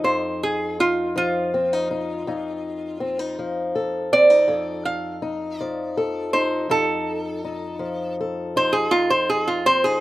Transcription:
Already playing: steel-string acoustic guitar F3 D#4 A4
0.04 steel-string acoustic guitar F2, resonator guitar played with a steel bar C5
0.43 resonator guitar played with a steel bar G#4
0.80 steel-string acoustic guitar D#4, resonator guitar played with a steel bar F4
1.16 steel-string acoustic guitar F3, resonator guitar played with a steel bar F4
1.54 steel-string acoustic guitar C4
1.73 steel-string acoustic guitar D#4
1.91 steel-string acoustic guitar D#4
2.27 steel-string acoustic guitar F2 D#4
3.00 steel-string acoustic guitar C4
3.19 steel-string acoustic guitar D#4
3.39 steel-string acoustic guitar F3
3.75 steel-string acoustic guitar A4
4.13 steel-string acoustic guitar C4, resonator guitar played with a steel bar D5
4.30 steel-string acoustic guitar D#4
4.48 steel-string acoustic guitar F2 A4
4.85 resonator guitar played with a steel bar F5
5.22 steel-string acoustic guitar D#4
5.58 steel-string acoustic guitar F3, resonator guitar played with a steel bar D5
5.97 steel-string acoustic guitar A4
6.33 steel-string acoustic guitar D#4, resonator guitar played with a steel bar C5
6.70 steel-string acoustic guitar F2 D#4, resonator guitar played with a steel bar A4
7.45 steel-string acoustic guitar D#4
7.79 steel-string acoustic guitar F3
8.21 steel-string acoustic guitar A4
8.56 steel-string acoustic guitar D#4, resonator guitar played with a steel bar C5
8.73 resonator guitar played with a steel bar G#4
8.91 steel-string acoustic guitar F2 D#4, resonator guitar played with a steel bar F4
9.10 resonator guitar played with a steel bar C5
9.30 resonator guitar played with a steel bar G#4
9.47 resonator guitar played with a steel bar F4
9.66 steel-string acoustic guitar C4, resonator guitar played with a steel bar C5
9.84 steel-string acoustic guitar D#4, resonator guitar played with a steel bar G#4

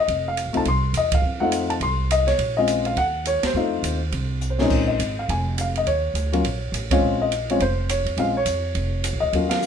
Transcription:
0.00 grand piano D#5
0.08 upright bass F1, kick, ride
0.28 grand piano F5
0.37 hi-hat pedal, ride
0.46 upright bass A1
0.53 upright bass C2, grand piano A3 C4 D#4 F4, ride
0.57 grand piano A5
0.65 upright bass C2, grand piano C6, kick, ride
0.93 upright bass E2, hi-hat pedal, ride
0.97 grand piano D#5
1.12 grand piano F5, kick, ride
1.22 upright bass F2
1.40 grand piano A3 C4 D#4 F4 F#5
1.52 hi-hat pedal, ride
1.70 grand piano A5, ride
1.80 upright bass C2, grand piano C6, kick, ride
2.11 grand piano D#5, hi-hat pedal, ride
2.27 grand piano C#5, snare, ride
2.38 upright bass A#1, kick, ride
2.57 grand piano G#3 C4 C#4 F4 D#5
2.68 hi-hat pedal, ride
2.85 grand piano F5, ride
2.96 upright bass D#2, grand piano F#5, kick, ride
3.25 grand piano C#5, hi-hat pedal, ride
3.43 grand piano C5, muted upright bass stroke, snare, ride
3.54 upright bass F2, grand piano A3 C4 D#4 F4
3.83 upright bass D#2, hi-hat pedal, ride
4.12 upright bass C2, kick, ride
4.41 hi-hat pedal
4.50 grand piano C5
4.58 grand piano A#2 G#3 C4 C#4 D#4 C#5, snare
4.70 upright bass A#1, kick, crash
4.88 grand piano D#5
4.99 upright bass G#1, hi-hat pedal, ride
5.19 grand piano F5
5.29 upright bass F1, grand piano G#5, kick, ride
5.58 grand piano F5, hi-hat pedal, ride
5.76 grand piano D#5, ride
5.86 upright bass D#2, grand piano C#5, kick, ride
6.14 upright bass D2, hi-hat pedal, ride
6.33 grand piano F#3 A#3 C#4 F4, ride
6.44 upright bass A#1, kick, ride
6.72 upright bass A1, hi-hat pedal, ride
6.91 grand piano G#3 C4 C#4 F4 C#5, kick, ride
7.01 upright bass A#1
7.21 grand piano D#5
7.32 hi-hat pedal, ride
7.50 grand piano G#3 C4 C#4 F4 C#5, ride
7.60 upright bass F1, grand piano C5, kick, ride
7.89 grand piano C#5, hi-hat pedal, ride
8.05 upright bass F2, ride
8.17 upright bass A#1, grand piano G#3 C4 C#4 F4 F5, kick, ride
8.37 grand piano C#5
8.46 upright bass F2, hi-hat pedal, ride
8.75 upright bass F1, kick, ride
9.04 hi-hat pedal, ride
9.13 upright bass A#1
9.20 upright bass D2, grand piano D#5
9.33 upright bass D#2, grand piano F#3 A#3 C#4 F4, kick, ride
9.49 grand piano F5, snare, ride
9.62 hi-hat pedal

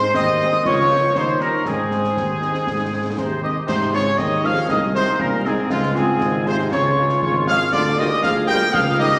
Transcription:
Already playing: trombone section G#3, woodwind section D#4 C5, trumpet section C5, piccolo C6
0.02 snare
0.14 tuba D#2, trombone section C4, woodwind section D#4 C5, trumpet section D#5, piccolo D#6, concert bass drum, snare
0.40 french horn section G#3 C4 D#4, snare
0.53 snare
0.63 tuba C#2, woodwind section F4 A#4, trombone section F4, trumpet section C#5, piccolo C#6, concert bass drum, snare
0.89 french horn section F3 A#3 F4, woodwind section C5
1.14 tuba D#2, trombone section D#4, woodwind section G4 C#5, trumpet section C5, piccolo C6, concert bass drum, snare
1.40 french horn section G3 C#4 D#4, trumpet section A#4, piccolo A#5, snare
1.65 tuba G#2, trombone section C4, woodwind section G#4 C5, trumpet section G#4, piccolo G#5, concert bass drum, snare
1.91 french horn section G#3 C4 D#4, snare
2.04 snare
2.16 tuba D#2, concert bass drum, snare
2.41 french horn section G#3 C4 D#4, snare
2.54 snare
2.67 tuba G#2, concert bass drum, snare
2.91 french horn section G#3 C4 D#4
3.18 tuba D#2, euphonium C3, woodwind section D#4, trumpet section C5, piccolo C6, concert bass drum, snare
3.42 euphonium D#3, french horn section G#3 C4 D#4, woodwind section G4, trumpet section D#5, piccolo D#6
3.67 tuba G#2, euphonium C3, trombone section G#3 D#4, woodwind section D#4, trumpet section C5, piccolo C6, concert bass drum, snare, crash
3.82 snare
3.92 euphonium C#3, french horn section G#3 C4 D#4, woodwind section F4, trumpet section C#5, piccolo C#6, snare
4.18 tuba D#2, euphonium D#3, woodwind section G#4, trumpet section D#5, piccolo D#6, concert bass drum, snare
4.43 euphonium F3, french horn section G#3 C4 D#4, woodwind section G#4, trumpet section F5, piccolo F6, snare
4.56 snare
4.69 tuba C2, euphonium D#3, woodwind section G#4, trumpet section D#5, piccolo D#6, concert bass drum, snare
4.94 euphonium C3, french horn section G#3 C4 D#4, woodwind section D#4, trumpet section C5, piccolo C6
5.07 snare
5.19 tuba C2, euphonium A#2, woodwind section C#4, trumpet section A#4, piccolo A#5, concert bass drum
5.44 euphonium G#2, french horn section G#3 C4 D#4, woodwind section C4, trumpet section G#4, piccolo G#5, snare
5.70 tuba C#2, euphonium F2, trombone section G#3 F4, woodwind section G#3, trumpet section F4, piccolo F5, concert bass drum, snare
5.83 snare
5.95 euphonium G#2, french horn section G#3 F4, woodwind section C4, trumpet section G#4, piccolo G#5, snare
6.21 tuba G#1, concert bass drum, snare
6.46 euphonium C3, french horn section G#3 F4, woodwind section D#4, trumpet section C5, piccolo C6, snare
6.59 snare
6.71 tuba C#2, euphonium C#3, woodwind section F4, trumpet section C#5, piccolo C#6, concert bass drum, snare
6.97 french horn section G#3 F4
7.09 snare
7.22 tuba G#1, euphonium C#3, woodwind section F4, trumpet section C#5, piccolo C#6, concert bass drum
7.47 euphonium F3, french horn section G#3 F4, woodwind section G#4, trumpet section F5, piccolo F6, snare
7.72 tuba D2, euphonium D3, trombone section G#3 F4, woodwind section F4, trumpet section D5, piccolo D6, concert bass drum, snare, crash
7.86 snare
7.98 euphonium D#3, french horn section G#3 A#3 F4, woodwind section G4, trumpet section D#5, piccolo D#6, snare
8.23 tuba D2, euphonium F3, woodwind section G#4, trumpet section F5, piccolo F6, concert bass drum, snare
8.47 euphonium G3, french horn section G#3 A#3 F4, woodwind section A#4, trumpet section G5, piccolo G6, snare
8.61 snare
8.72 tuba C#2, euphonium F3, trombone section G3 D#4, woodwind section G#4, trumpet section F5, piccolo F6, concert bass drum, snare
8.99 euphonium D#3, french horn section G3 A#3 D#4, woodwind section G4, trumpet section D#5, piccolo D#6
9.12 snare

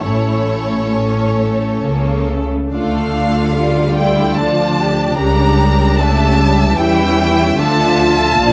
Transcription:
0.01 double bass section A1, cello section A2, viola section A3 E4, violin section C#4 A4 C#5
0.96 viola section C#4
1.40 viola section A3
1.84 double bass section C#2, cello section C#3, viola section A#3
2.32 viola section A3
2.72 double bass section D2, cello section D3, viola section A3 D4, violin section F4 A4 F5
3.15 violin section F4
3.56 viola section G3 F4, violin section D5
3.97 viola section E4, violin section G5
4.36 viola section F3 D4, violin section F4 A5
4.78 violin section G4
5.17 double bass section C#2, cello section C#3, viola section G3, violin section A#4 A#5
5.97 viola section A3, violin section E5 A5
6.38 viola section G3
6.77 double bass section E2, cello section E3, viola section G3 C#4, violin section E4 E5 G5
7.19 violin section E4
7.57 double bass section D2, cello section D3, viola section F3 D4, violin section F4 A5
8.01 viola section F4
8.41 double bass section A#1, cello section A#2, viola section F3, violin section D4 D5

